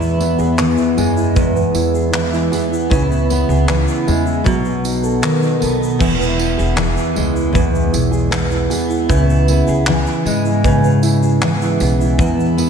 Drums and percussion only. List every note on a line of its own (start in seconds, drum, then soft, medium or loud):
0.02 shaker soft
0.21 tambourine medium
0.39 shaker medium
0.58 clap loud
0.58 shaker medium
0.77 shaker medium
0.98 tambourine medium
1.17 shaker soft
1.36 kick loud
1.36 shaker medium
1.56 shaker soft
1.75 tambourine medium
1.75 shaker soft
1.95 shaker medium
2.14 clap loud
2.14 shaker medium
2.34 shaker soft
2.53 tambourine medium
2.53 shaker soft
2.73 shaker medium
2.91 kick loud
2.91 shaker medium
3.11 shaker soft
3.30 tambourine medium
3.50 shaker soft
3.68 clap loud
3.68 shaker medium
3.88 shaker medium
4.08 tambourine medium
4.27 shaker soft
4.46 kick loud
4.46 shaker medium
4.65 shaker soft
4.85 tambourine medium
4.85 shaker soft
5.03 shaker medium
5.23 clap loud
5.23 shaker medium
5.43 shaker medium
5.62 tambourine medium
5.62 shaker soft
5.83 shaker medium
6.01 kick loud
6.01 crash loud
6.01 shaker medium
6.22 shaker soft
6.39 tambourine medium
6.59 shaker soft
6.77 clap loud
6.77 shaker medium
6.97 shaker soft
7.16 tambourine medium
7.36 shaker medium
7.55 kick loud
7.55 shaker medium
7.75 shaker soft
7.94 tambourine medium
7.94 shaker soft
8.13 shaker medium
8.32 clap loud
8.32 shaker medium
8.51 shaker soft
8.71 tambourine medium
8.71 shaker soft
8.90 shaker medium
9.10 kick loud
9.10 shaker medium
9.30 shaker soft
9.48 tambourine medium
9.67 shaker medium
9.87 clap loud
9.87 shaker medium
10.07 shaker medium
10.26 tambourine medium
10.45 shaker soft
10.64 kick loud
10.64 shaker medium
10.84 shaker soft
11.03 tambourine medium
11.03 shaker soft
11.23 shaker medium
11.42 clap loud
11.42 shaker medium
11.62 shaker soft
11.80 tambourine medium
11.80 shaker medium
12.01 shaker medium
12.19 kick loud
12.19 shaker medium
12.40 shaker medium
12.58 tambourine medium